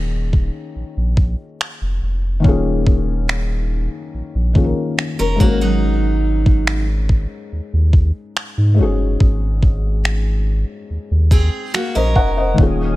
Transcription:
Already playing: D#1 D#3 A#3 C#4 F4 G#4
0.33 kick
0.76 A#1
0.97 A#1
1.17 kick
1.61 finger snap
1.82 F1
2.02 F1
2.40 D#3 A#3
2.44 D#1 C#4 F4, kick
2.49 G#4
2.87 kick
3.29 finger snap
4.14 A#1
4.35 A#1
4.53 D#3 A#3 C#4 F4, kick
4.58 G#4
4.64 A#4
4.99 finger snap
5.19 F1 C#4 A#4
5.36 G#2 G#3
5.40 G#1 A#3 C#4 F#4, kick
5.44 A#4
5.61 F#3 D#4
6.46 kick
6.67 finger snap
7.09 kick
7.52 D#2
7.73 D#2
7.93 kick
8.37 finger snap
8.57 G#2
8.74 G#2 G#3
8.78 F#1 C#4 F#4
8.83 G#4
9.20 G#1, kick
9.63 kick
10.05 finger snap
10.90 D#2
11.11 D#2
11.31 C4 G#4, kick
11.74 A#3 F#4, finger snap
11.95 A#1 C#4 A#4 C5 D#5
12.16 F1 D#5 F#5, kick
12.37 C5 D#5
12.54 D#3 A#3
12.58 D#1 C#4 F4 C#5 F5 G#5 D#6, kick
12.62 G#4

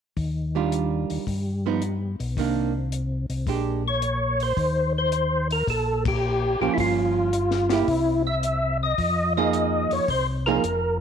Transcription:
0.17 D#2, kick, open hi-hat
0.55 D#3 G3 D4 F4
0.72 closed hi-hat
1.10 D#2, open hi-hat
1.27 G2, kick, open hi-hat
1.66 F3 B3 D#4
1.82 closed hi-hat
2.20 B1, open hi-hat
2.37 C2 D#3 A#3 D4, kick, open hi-hat
2.92 closed hi-hat
3.30 C2, open hi-hat
3.47 A#1 G#3 D4 G4, kick, open hi-hat
3.88 C#5
4.02 closed hi-hat
4.40 C5, open hi-hat
4.57 D#2, kick, open hi-hat
4.98 C5
5.12 closed hi-hat
5.51 A#4, open hi-hat
5.67 A#1 A4, kick, open hi-hat
6.05 G4, kick, ride
6.61 A#1 F3 A#3 C#4 G4
6.74 G1 E4
6.78 F4, kick, open hi-hat
7.33 closed hi-hat
7.51 snare
7.69 A#3 E4 G4, snare, open hi-hat
7.88 C2, kick, open hi-hat
8.27 E5
8.43 closed hi-hat
8.83 D#5
8.98 F2, kick, open hi-hat
9.37 F3 A#3 D#4 G#4 D#5
9.53 closed hi-hat
9.91 F2 C#5, open hi-hat
10.08 C2 C5, kick, open hi-hat
10.46 F3 A#3 D#4 G#4 A#4
10.64 F1, closed hi-hat

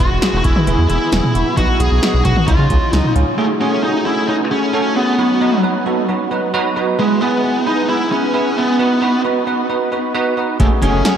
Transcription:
0.00 B3 E4 F#4 B4, kick
0.11 E1
0.22 B3 E4 G#4, snare, closed hi-hat
0.33 E1
0.38 F#4
0.44 E1 B3 E4 G#4, kick, closed hi-hat
0.56 mid tom
0.67 E1 B3 E4 G#4, closed hi-hat
0.78 E2
0.90 E1 B3 E4 G#4, closed hi-hat
1.12 E1 B3 E4 G#4, snare, closed hi-hat
1.24 mid tom
1.35 E1 B3 E4 F#4, closed hi-hat
1.57 B1 B3 D#4 F#4, kick, closed hi-hat
1.80 B1 B3 D#4 F#4 G#4, closed hi-hat
1.91 B1
2.03 B3 D#4 F#4, snare, closed hi-hat
2.14 B1
2.25 B1 B3 D#4 F#4, kick, closed hi-hat, mid tom
2.37 mid tom
2.48 C#2 C#4 D#4 F4, kick, closed hi-hat
2.59 C#3
2.70 C#2 C#4 D#4 F4, kick, closed hi-hat
2.93 C#2 C#4 D#4 F4, snare, closed hi-hat
3.04 mid tom
3.15 C#2 C#4 D#4 F4, closed hi-hat
3.38 A3 C#4 F#4 G#4
3.61 A3 C#4 F#4 G#4
3.83 A3 C#4 D#4 F#4 G#4
4.06 A3 C#4 E4 F#4 G#4
4.28 A3 C#4 D#4 F#4 B4
4.51 A3 C#4 F#4 G#4
4.73 A3 C#4 F#4 A4
4.96 A3 B3 C#4 F#4 G#4
5.18 F#3 B3 D#4 F#4 B4
5.41 F#3 B3 D#4 F#4 B4
5.63 F#3 B3 D#4 F#4 B4
5.86 F#3 B3 D#4 F#4 A4
6.09 F#3 B3 D#4 F#4 B4
6.31 F#3 B3 D#4 F#4 B4
6.54 F#3 B3 D#4 F#4 B4
6.76 F#3 B3 D#4 F#4 B4
6.99 G#3 B3 E4 G#4 B4
7.21 B3 E4 G#4 B4
7.44 B3 E4 G#4 B4
7.66 B3 D#4 E4 G#4 B4
7.89 B3 E4 G#4 B4
8.11 B3 C#4 E4 G#4 B4
8.34 B3 E4 G#4 B4
8.57 B3 E4 G#4 B4
8.79 B3 D#4 F#4 B4
9.02 B3 D#4 F#4 B4
9.24 B3 D#4 F#4 B4
9.47 B3 D#4 F#4 B4
9.69 B3 D#4 F#4 B4
9.92 B3 D#4 F#4 B4
10.14 B3 D#4 F#4 B4
10.37 B3 D#4 F#4 B4
10.60 F#1 A3 C#4 F#4 G#4, kick, closed hi-hat
10.82 F#1 A3 C#4 F#4 G#4, closed hi-hat
10.93 F#1
11.05 A3 C#4 F#4 G#4, snare, closed hi-hat

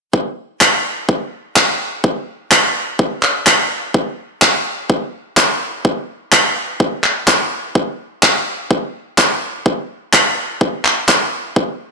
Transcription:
0.13 kick
0.61 kick, clap
1.09 kick
1.56 kick, clap
2.04 kick
2.51 kick, clap
2.99 kick
3.23 clap
3.47 kick, clap
3.94 kick
4.42 kick, clap
4.90 kick
5.37 kick, clap
5.85 kick
6.32 kick, clap
6.80 kick
7.04 clap
7.28 kick, clap
7.75 kick
8.23 kick, clap
8.71 kick
9.18 kick, clap
9.66 kick
10.13 kick, clap
10.61 kick
10.85 clap
11.09 kick, clap
11.56 kick

